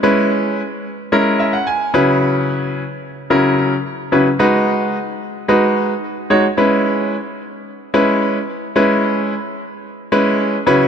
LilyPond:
\new Staff \with { instrumentName = "Grand piano" } { \time 4/4 \key cis \dorian \tempo 4 = 110 << { r2 r8 e''16 fis''16 gis''8 b''8 | r1 | r1 | r1 |
r1 | } \\ { <gis cis' e' b'>4 r4 <gis cis' e' ais'>4 r8 <cis fis cis' e' b'>8~ | <cis fis cis' e' b'>4 r4 <cis fis cis' e' ais'>4 r8 <cis fis cis' e' b'>16 r16 | <gis dis' fis' b'>4 r4 <gis dis' fis' b'>4 r8 <gis dis' fis' cis''>16 r16 | <gis cis' e' b'>4 r4. <gis cis' e' b'>4 r8 |
<gis cis' e' b'>4 r4. <gis cis' e' b'>4 <cis fis cis' e' b'>8 | } >> }